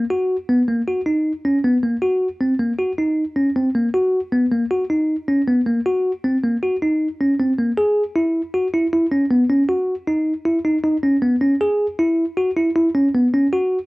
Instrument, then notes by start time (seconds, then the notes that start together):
tine electric piano
0.10 F#4
0.49 B3
0.68 A#3
0.88 F#4
1.06 D#4
1.45 C#4
1.64 B3
1.83 A#3
2.02 F#4
2.41 C4
2.59 A#3
2.79 F#4
2.98 D#4
3.36 C#4
3.56 C4
3.75 A#3
3.94 F#4
4.32 B3
4.52 A#3
4.71 F#4
4.90 D#4
5.28 C#4
5.48 B3
5.67 A#3
5.86 F#4
6.24 C4
6.43 A#3
6.63 F#4
6.82 D#4
7.21 C#4
7.40 C4
7.58 A#3
7.78 G#4
8.16 E4
8.54 F#4
8.74 E4
8.93 E4
9.12 C#4
9.31 B3
9.50 C#4
9.69 F#4
10.07 D#4
10.46 E4
10.65 D#4
10.84 D#4
11.03 C#4
11.22 B3
11.41 C#4
11.61 G#4
11.99 E4
12.37 F#4
12.56 E4
12.75 E4
12.95 C#4
13.14 B3
13.33 C#4
13.53 F#4